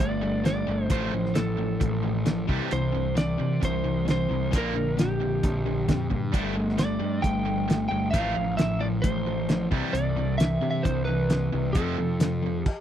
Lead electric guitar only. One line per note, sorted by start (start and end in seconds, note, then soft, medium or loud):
0.00 0.45 D5 medium
0.46 0.91 D5 medium
0.91 1.38 C5 medium
1.35 2.45 A4 medium
2.73 3.17 C5 loud
3.18 3.64 D5 loud
3.65 4.05 C5 loud
4.11 4.51 C5 medium
4.58 5.00 A#4 medium
5.00 6.08 G4 medium
6.79 7.21 D5 medium
7.22 7.86 G5 medium
7.89 8.10 G5 medium
8.11 8.57 F5 medium
8.57 8.81 E5 medium
8.81 8.87 D5 medium
9.02 9.67 C5 medium
9.93 10.38 D5 loud
10.38 10.69 E5 loud
10.71 10.82 E5 medium
10.83 11.05 C5 loud
11.05 11.73 B4 loud
11.73 12.63 A4 medium
12.63 12.81 G4 medium